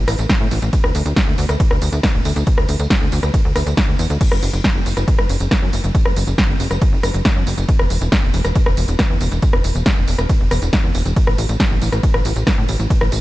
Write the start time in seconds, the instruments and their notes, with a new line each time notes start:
0.08 analog synth bass A1, cross-stick, open hi-hat, tambourine
0.19 analog synth bass A1, closed hi-hat, tambourine
0.29 kick, snare, closed hi-hat, ride, tambourine
0.41 analog synth bass A2
0.51 analog synth bass A1, open hi-hat, tambourine
0.62 analog synth bass A1, closed hi-hat, tambourine
0.73 kick, closed hi-hat, ride, tambourine
0.84 analog synth bass D2, cross-stick
0.95 analog synth bass D2, open hi-hat, tambourine
1.06 analog synth bass D2, closed hi-hat, tambourine
1.16 kick, snare, closed hi-hat, ride, tambourine
1.27 analog synth bass D2
1.38 analog synth bass D2, open hi-hat, tambourine
1.49 analog synth bass D2, cross-stick, closed hi-hat, tambourine
1.60 kick, closed hi-hat, ride, tambourine
1.71 analog synth bass D2, cross-stick
1.82 analog synth bass D2, open hi-hat, tambourine
1.92 analog synth bass D2, closed hi-hat, tambourine
2.03 kick, cross-stick, snare, closed hi-hat, ride, tambourine
2.14 analog synth bass D1
2.25 analog synth bass D2, open hi-hat, tambourine
2.36 analog synth bass D2, closed hi-hat, tambourine
2.47 kick, closed hi-hat, ride, tambourine
2.58 analog synth bass D2, cross-stick
2.69 analog synth bass D2, open hi-hat, tambourine
2.79 analog synth bass D2, closed hi-hat, tambourine
2.90 kick, snare, closed hi-hat, ride, tambourine
3.01 analog synth bass D2
3.12 analog synth bass D2, open hi-hat, tambourine
3.23 analog synth bass D2, cross-stick, closed hi-hat, tambourine
3.34 kick, closed hi-hat, ride, tambourine
3.45 analog synth bass D2
3.56 analog synth bass D2, cross-stick, open hi-hat, tambourine
3.66 analog synth bass D2, closed hi-hat, tambourine
3.77 kick, snare, closed hi-hat, ride, tambourine
3.88 analog synth bass D2
3.99 analog synth bass E2, open hi-hat, tambourine
4.10 analog synth bass D2, closed hi-hat, tambourine
4.21 kick, closed hi-hat, crash, ride, tambourine
4.32 analog synth bass F#1, cross-stick
4.43 analog synth bass F#1, open hi-hat, tambourine
4.53 analog synth bass F#1, closed hi-hat, tambourine
4.64 kick, snare, closed hi-hat, ride, tambourine
4.75 analog synth bass F#1
4.86 analog synth bass F#1, open hi-hat, tambourine
4.97 analog synth bass F#1, cross-stick, closed hi-hat, tambourine
5.08 kick, closed hi-hat, ride, tambourine
5.19 analog synth bass F#1, cross-stick
5.29 analog synth bass F#1, open hi-hat, tambourine
5.40 analog synth bass F#1, closed hi-hat, tambourine
5.51 kick, cross-stick, snare, closed hi-hat, ride, tambourine
5.62 analog synth bass F#2
5.73 analog synth bass F#1, open hi-hat, tambourine
5.84 analog synth bass F#1, closed hi-hat, tambourine
5.95 kick, closed hi-hat, ride, tambourine
6.06 analog synth bass F#1, cross-stick
6.16 analog synth bass F#1, open hi-hat, tambourine
6.27 analog synth bass F#1, closed hi-hat, tambourine
6.38 kick, snare, closed hi-hat, ride, tambourine
6.49 analog synth bass F#1
6.60 analog synth bass F#1, open hi-hat, tambourine
6.71 analog synth bass F#1, cross-stick, closed hi-hat, tambourine
6.82 kick, closed hi-hat, ride, tambourine
6.92 analog synth bass F#1
7.03 analog synth bass F#1, cross-stick, open hi-hat, tambourine
7.14 analog synth bass F#1, closed hi-hat, tambourine
7.25 kick, snare, closed hi-hat, ride, tambourine
7.36 analog synth bass F#2
7.47 analog synth bass F#1, open hi-hat, tambourine
7.58 analog synth bass F#1, closed hi-hat, tambourine
7.69 kick, closed hi-hat, ride, tambourine
7.79 analog synth bass E1, cross-stick
7.90 analog synth bass E1, open hi-hat, tambourine
8.01 analog synth bass E1, closed hi-hat, tambourine
8.12 kick, snare, closed hi-hat, ride, tambourine
8.23 analog synth bass E1
8.34 analog synth bass E1, open hi-hat, tambourine
8.45 analog synth bass E1, cross-stick, closed hi-hat, tambourine
8.55 kick, closed hi-hat, ride, tambourine
8.66 analog synth bass E1, cross-stick
8.77 analog synth bass E1, open hi-hat, tambourine
8.88 analog synth bass E1, closed hi-hat, tambourine
8.99 kick, cross-stick, snare, closed hi-hat, ride, tambourine
9.10 analog synth bass E2
9.21 analog synth bass E1, open hi-hat, tambourine
9.32 analog synth bass E1, closed hi-hat, tambourine
9.42 kick, closed hi-hat, ride, tambourine
9.53 analog synth bass E1, cross-stick
9.64 analog synth bass E1, open hi-hat, tambourine
9.75 analog synth bass E1, closed hi-hat, tambourine
9.86 kick, snare, closed hi-hat, ride, tambourine
9.97 analog synth bass E1
10.08 analog synth bass E1, open hi-hat, tambourine
10.19 analog synth bass E1, cross-stick, closed hi-hat, tambourine
10.29 kick, closed hi-hat, ride, tambourine
10.40 analog synth bass E1
10.51 analog synth bass E1, cross-stick, open hi-hat, tambourine
10.62 analog synth bass E1, closed hi-hat, tambourine
10.73 kick, snare, closed hi-hat, ride
10.84 analog synth bass E2
10.95 analog synth bass E1, open hi-hat, tambourine
11.06 analog synth bass E1, closed hi-hat, tambourine
11.16 kick, closed hi-hat, ride, tambourine
11.27 analog synth bass A1, cross-stick
11.38 analog synth bass A1, open hi-hat, tambourine
11.49 analog synth bass A1, closed hi-hat, tambourine
11.60 kick, snare, closed hi-hat, ride, tambourine
11.71 analog synth bass A1
11.82 analog synth bass A1, open hi-hat, tambourine
11.92 analog synth bass A1, cross-stick, closed hi-hat, tambourine
12.03 kick, closed hi-hat, ride, tambourine
12.14 analog synth bass A1, cross-stick
12.25 analog synth bass A1, open hi-hat, tambourine
12.36 analog synth bass A1, closed hi-hat, tambourine
12.47 kick, cross-stick, snare, closed hi-hat, ride, tambourine
12.58 analog synth bass A2
12.69 analog synth bass A1, open hi-hat, tambourine
12.79 analog synth bass A1, closed hi-hat, tambourine
12.90 kick, closed hi-hat, ride, tambourine
13.01 analog synth bass A1, cross-stick
13.12 analog synth bass A1, open hi-hat, tambourine